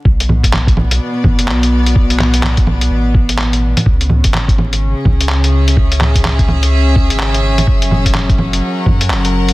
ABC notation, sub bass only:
X:1
M:4/4
L:1/16
Q:"Swing 16ths" 1/4=126
K:Bdor
V:1 name="Sub bass" clef=bass
B,,,8 z2 F,,,2 B,,,4- | B,,,8 A,,,6- A,,, z | C,,3 G,,,6 z C,,6- | C,,8- C,,3 G,,,3 G,,,2 |
F,,,8 z2 F,,2 F,,,4 |]